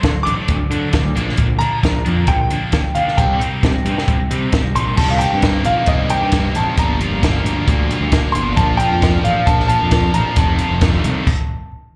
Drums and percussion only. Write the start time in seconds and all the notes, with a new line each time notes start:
0.03 kick, snare, closed hi-hat
0.27 closed hi-hat
0.48 kick, closed hi-hat
0.72 closed hi-hat
0.93 kick, snare, closed hi-hat
1.17 closed hi-hat
1.29 snare
1.37 kick, closed hi-hat
1.61 closed hi-hat
1.83 kick, snare, closed hi-hat
2.06 closed hi-hat
2.27 kick, closed hi-hat
2.50 closed hi-hat
2.72 kick, snare, closed hi-hat
2.95 closed hi-hat
3.08 snare
3.18 kick, closed hi-hat
3.41 closed hi-hat
3.63 kick, snare, closed hi-hat
3.86 closed hi-hat
3.98 snare
4.08 kick, closed hi-hat
4.31 closed hi-hat
4.53 kick, snare, closed hi-hat
4.76 closed hi-hat
4.97 kick, crash
5.21 closed hi-hat
5.42 kick, snare, closed hi-hat
5.65 closed hi-hat
5.86 kick, closed hi-hat
6.10 closed hi-hat
6.32 kick, snare, closed hi-hat
6.55 closed hi-hat
6.78 kick, closed hi-hat
7.01 closed hi-hat
7.23 kick, snare, closed hi-hat
7.46 closed hi-hat
7.68 kick, closed hi-hat
7.91 closed hi-hat
8.12 kick, snare, closed hi-hat
8.35 closed hi-hat
8.57 kick, closed hi-hat
8.80 closed hi-hat
9.02 kick, snare, closed hi-hat
9.25 closed hi-hat
9.47 kick, closed hi-hat
9.60 snare
9.69 closed hi-hat
9.91 kick, snare, closed hi-hat
10.14 closed hi-hat
10.36 kick, closed hi-hat
10.59 closed hi-hat
10.81 kick, snare, closed hi-hat
11.04 closed hi-hat
11.27 kick, crash